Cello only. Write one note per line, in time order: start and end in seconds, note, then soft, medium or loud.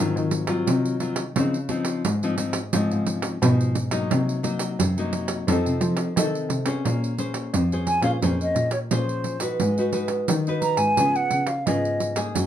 0.00 0.13 D#3 medium
0.16 0.60 D#3 medium
0.67 1.26 C3 medium
1.36 1.95 C#3 medium
2.05 2.63 G#2 medium
2.74 2.88 G#2 medium
2.92 3.35 G#2 medium
3.42 4.01 B2 medium
4.11 4.69 C3 medium
4.80 5.38 F#2 medium
5.48 5.63 F2 medium
5.66 5.80 C3 medium
5.81 6.13 F3 medium
6.17 6.48 D#3 medium
6.49 6.81 C3 medium
6.85 7.44 A#2 medium
7.54 7.98 F2 medium
8.02 8.18 A#2 medium
8.23 8.52 F2 medium
8.55 8.85 A#2 medium
8.91 9.50 A#2 medium
9.60 10.19 G#2 medium
10.29 10.73 D#3 medium
10.77 10.93 G#2 medium
10.97 11.27 C#3 medium
11.31 11.60 C#3 medium
11.66 12.25 C#3 medium
12.36 12.46 F#2 medium